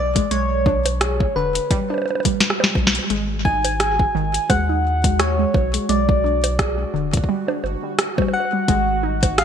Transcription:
0.00 0.20 B1 loud
0.00 0.33 D5 loud
0.16 0.26 G#3 medium
0.16 kick loud
0.16 closed hi-hat medium
0.31 1.27 B1 loud
0.31 0.39 G#3 loud
0.31 1.37 C#5 loud
0.31 closed hi-hat medium
0.66 0.79 D4 medium
0.66 kick loud
0.86 closed hi-hat medium
0.86 high bongo medium
1.01 1.14 G#4 medium
1.01 cross-stick loud
1.01 closed hi-hat medium
1.20 kick loud
1.36 1.60 E1 medium
1.36 1.43 D3 loud
1.36 2.75 B4 loud
1.55 closed hi-hat medium
1.71 1.78 G3 loud
1.71 kick loud
1.71 closed hi-hat medium
1.90 2.00 D4 medium
1.90 high bongo soft
1.94 high bongo soft
1.98 high bongo soft
2.02 high bongo medium
2.06 high bongo medium
2.10 high bongo medium
2.15 high bongo medium
2.20 high bongo medium
2.25 2.31 G3 medium
2.25 kick loud
2.25 closed hi-hat medium
2.40 snare medium
2.40 closed hi-hat medium
2.50 cross-stick loud
2.60 2.70 G3 medium
2.60 snare medium
2.60 high bongo medium
2.75 2.99 B1 medium
2.75 kick loud
2.75 high bongo soft
2.87 snare medium
2.87 high bongo soft
2.95 3.05 G3 medium
2.95 closed hi-hat medium
2.95 high bongo soft
3.10 4.06 G#1 loud
3.10 3.18 G#3 loud
3.10 9.44 F#4 medium
3.10 closed hi-hat medium
3.45 3.58 D#4 medium
3.45 4.51 G#5 loud
3.45 kick loud
3.65 closed hi-hat medium
3.65 high bongo medium
3.80 3.93 G#4 medium
3.80 cross-stick loud
3.80 closed hi-hat medium
3.99 kick loud
4.15 4.39 G#1 medium
4.15 4.23 D#3 loud
4.34 closed hi-hat medium
4.50 5.46 D#2 medium
4.50 4.57 G#3 loud
4.50 5.21 F#5 loud
4.50 kick loud
4.50 closed hi-hat medium
4.50 high bongo medium
4.69 4.79 D#4 medium
5.04 5.10 G#3 medium
5.04 kick loud
5.04 closed hi-hat medium
5.19 5.91 C#5 loud
5.19 cross-stick loud
5.19 closed hi-hat medium
5.39 5.49 G#3 medium
5.54 5.78 B1 loud
5.54 kick loud
5.54 high bongo soft
5.74 5.84 G#3 medium
5.74 closed hi-hat medium
5.89 6.85 B1 loud
5.89 5.97 G#3 loud
5.89 7.29 D5 loud
5.89 closed hi-hat medium
6.09 kick loud
6.24 6.37 D4 medium
6.44 closed hi-hat medium
6.44 high bongo medium
6.59 6.72 G#4 medium
6.59 kick loud
6.59 cross-stick loud
6.59 closed hi-hat medium
6.94 7.18 E1 medium
6.94 7.02 D3 loud
7.13 kick loud
7.13 closed hi-hat medium
7.17 kick medium
7.24 kick medium
7.29 7.36 G3 loud
7.48 7.58 D4 medium
7.48 high bongo medium
7.64 7.76 G1 medium
7.64 high bongo medium
7.83 7.89 G3 medium
7.99 cross-stick loud
7.99 closed hi-hat medium
8.18 8.28 G3 medium
8.18 kick loud
8.18 high bongo medium
8.22 high bongo medium
8.28 high bongo medium
8.34 9.40 F#5 loud
8.34 high bongo soft
8.40 high bongo soft
8.45 high bongo soft
8.53 8.63 G3 medium
8.68 9.44 G#1 loud
8.68 8.76 G#3 loud
8.68 kick loud
8.68 closed hi-hat medium
9.03 9.16 D#4 medium
9.23 kick loud
9.23 closed hi-hat medium
9.23 high bongo medium
9.38 9.44 G#4 medium
9.38 9.44 F5 loud
9.38 cross-stick loud
9.38 closed hi-hat medium

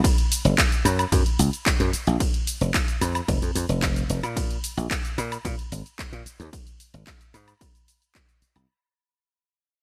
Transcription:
0.04 kick loud
0.04 closed hi-hat medium
0.04 ride medium
0.04 shaker soft
0.18 closed hi-hat soft
0.32 open hi-hat loud
0.32 shaker medium
0.45 0.54 F#1 loud
0.45 closed hi-hat soft
0.45 shaker soft
0.58 kick loud
0.58 clap loud
0.58 closed hi-hat medium
0.58 ride medium
0.58 shaker soft
0.72 closed hi-hat soft
0.72 shaker soft
0.85 1.04 F#2 loud
0.85 open hi-hat medium
0.85 high woodblock medium
0.85 shaker medium
0.99 closed hi-hat soft
0.99 high woodblock medium
0.99 shaker soft
1.12 1.21 F#2 medium
1.12 kick loud
1.12 closed hi-hat medium
1.12 ride medium
1.12 shaker soft
1.26 closed hi-hat soft
1.39 1.49 C#2 loud
1.39 open hi-hat loud
1.39 shaker medium
1.53 closed hi-hat soft
1.53 shaker soft
1.66 kick loud
1.66 clap loud
1.66 closed hi-hat medium
1.66 ride medium
1.66 shaker soft
1.80 1.89 F#2 medium
1.80 closed hi-hat soft
1.93 muted slap bass stroke soft
1.93 open hi-hat medium
1.93 shaker medium
2.07 2.16 A#1 loud
2.07 closed hi-hat soft
2.07 shaker soft
2.20 kick loud
2.20 closed hi-hat medium
2.20 ride medium
2.20 shaker soft
2.34 closed hi-hat soft
2.47 open hi-hat loud
2.47 shaker medium
2.61 2.70 F1 loud
2.61 closed hi-hat soft
2.61 shaker soft
2.74 kick loud
2.74 clap loud
2.74 closed hi-hat medium
2.74 ride medium
2.74 shaker soft
2.88 closed hi-hat soft
2.88 shaker soft
3.01 3.20 F2 loud
3.01 open hi-hat medium
3.01 high woodblock medium
3.01 shaker medium
3.15 closed hi-hat soft
3.15 high woodblock medium
3.15 shaker soft
3.28 3.38 F1 loud
3.28 kick loud
3.28 closed hi-hat medium
3.28 ride medium
3.28 shaker soft
3.42 3.51 F2 medium
3.42 closed hi-hat soft
3.42 shaker soft
3.55 3.65 F2 medium
3.55 open hi-hat loud
3.55 shaker medium
3.69 4.03 F1 loud
3.69 closed hi-hat soft
3.69 shaker soft
3.82 kick loud
3.82 clap loud
3.82 closed hi-hat medium
3.82 ride medium
3.82 shaker soft
3.96 closed hi-hat soft
3.96 shaker soft
4.10 4.19 F1 medium
4.10 open hi-hat medium
4.10 shaker medium
4.23 4.57 A#2 medium
4.23 closed hi-hat soft
4.23 high woodblock medium
4.23 shaker soft
4.37 kick loud
4.37 closed hi-hat medium
4.37 ride medium
4.37 shaker soft
4.51 closed hi-hat soft
4.64 open hi-hat loud
4.64 shaker medium
4.77 4.86 A#1 loud
4.77 closed hi-hat soft
4.77 shaker soft
4.91 kick loud
4.91 clap loud
4.91 closed hi-hat medium
4.91 ride medium
4.91 shaker soft
5.05 closed hi-hat soft
5.05 shaker soft
5.18 5.36 A#2 loud
5.18 open hi-hat medium
5.18 high woodblock medium
5.18 shaker medium
5.32 closed hi-hat soft
5.32 high woodblock medium
5.32 shaker soft
5.45 5.54 A#2 loud
5.45 kick loud
5.45 closed hi-hat medium
5.45 ride medium
5.45 shaker soft
5.59 closed hi-hat soft
5.72 5.81 G#1 loud
5.72 open hi-hat loud
5.72 shaker medium
5.86 closed hi-hat soft
5.86 shaker soft
5.99 kick loud
5.99 clap loud
5.99 closed hi-hat medium
5.99 ride medium
5.99 shaker soft
6.13 6.22 A#2 medium
6.13 closed hi-hat soft
6.26 muted slap bass stroke soft
6.26 open hi-hat medium
6.26 shaker medium
6.40 6.49 D#2 loud
6.40 closed hi-hat soft
6.40 shaker soft
6.53 kick loud
6.53 closed hi-hat medium
6.53 ride medium
6.53 shaker soft
6.67 closed hi-hat soft
6.67 shaker soft
6.80 open hi-hat loud
6.80 shaker medium
6.94 7.03 G#1 loud
6.94 closed hi-hat soft
6.94 shaker soft
7.07 kick loud
7.07 clap loud
7.07 closed hi-hat medium
7.07 ride medium
7.07 shaker soft
7.21 closed hi-hat soft
7.21 shaker soft
7.34 7.52 G#2 loud
7.34 open hi-hat medium
7.34 high woodblock medium
7.34 shaker medium
7.48 closed hi-hat soft
7.48 high woodblock medium
7.48 shaker soft
7.61 kick loud
7.61 closed hi-hat medium
7.61 ride medium
7.61 shaker soft
7.75 closed hi-hat soft
7.75 shaker soft
7.88 open hi-hat loud
7.88 shaker medium
8.02 closed hi-hat soft
8.02 shaker soft
8.15 kick loud
8.15 clap loud
8.15 closed hi-hat medium
8.15 ride medium
8.15 shaker soft
8.29 closed hi-hat soft
8.29 shaker soft
8.42 muted slap bass stroke soft
8.42 open hi-hat medium
8.42 shaker medium
8.56 8.65 C2 medium
8.56 closed hi-hat soft
8.56 high woodblock medium
8.56 shaker soft

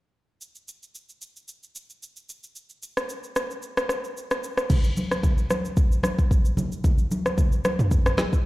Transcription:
0.41 shaker medium
0.55 shaker medium
0.68 shaker medium
0.83 shaker soft
0.95 shaker medium
1.09 shaker soft
1.22 shaker medium
1.36 shaker soft
1.48 shaker medium
1.63 shaker soft
1.75 shaker medium
1.90 shaker soft
2.03 shaker medium
2.16 shaker medium
2.29 shaker medium
2.43 shaker medium
2.56 shaker medium
2.69 shaker medium
2.83 shaker medium
2.97 cross-stick medium
2.97 shaker medium
3.09 shaker medium
3.24 shaker soft
3.36 cross-stick medium
3.36 shaker medium
3.51 shaker soft
3.62 shaker medium
3.77 cross-stick loud
3.77 shaker medium
3.89 cross-stick medium
3.89 shaker medium
4.04 shaker soft
4.17 shaker medium
4.31 cross-stick medium
4.31 shaker medium
4.44 shaker medium
4.57 cross-stick medium
4.57 shaker medium
4.70 kick loud
4.70 crash medium
4.70 low conga medium
4.70 shaker medium
4.84 shaker medium
4.97 high conga medium
4.97 shaker medium
5.11 cross-stick medium
5.11 shaker medium
5.23 kick medium
5.23 low conga medium
5.23 shaker medium
5.38 shaker soft
5.50 cross-stick medium
5.50 high conga medium
5.50 shaker medium
5.65 shaker medium
5.77 kick loud
5.77 shaker medium
5.92 shaker medium
6.03 cross-stick medium
6.03 high conga medium
6.03 shaker medium
6.19 kick medium
6.19 shaker soft
6.31 kick medium
6.31 shaker medium
6.45 shaker medium
6.57 high conga medium
6.57 low conga medium
6.57 shaker medium
6.72 shaker medium
6.84 kick loud
6.84 low conga medium
6.84 shaker medium
6.98 shaker medium
7.11 high conga medium
7.11 shaker medium
7.26 cross-stick medium
7.26 shaker medium
7.38 kick medium
7.38 low conga medium
7.38 shaker medium
7.52 shaker soft
7.65 cross-stick loud
7.65 high conga medium
7.65 shaker medium
7.79 mid tom medium
7.79 shaker medium
7.91 kick loud
7.91 shaker medium
8.06 cross-stick loud
8.06 shaker medium
8.17 cross-stick medium
8.17 snare medium
8.17 high conga medium
8.17 shaker medium
8.33 kick medium
8.33 shaker soft

